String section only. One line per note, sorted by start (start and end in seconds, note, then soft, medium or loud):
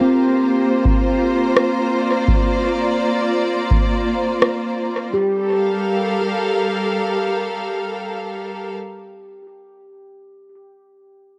0.00 5.14 A#3 medium
0.00 5.14 F4 medium
0.00 1.53 G4 medium
0.00 5.14 C5 medium
0.00 0.50 F5 medium
2.01 5.14 D5 medium
5.14 8.75 G3 medium
5.26 8.75 G4 medium
5.38 8.75 A4 medium
5.46 8.75 A#4 medium
5.58 8.75 F5 medium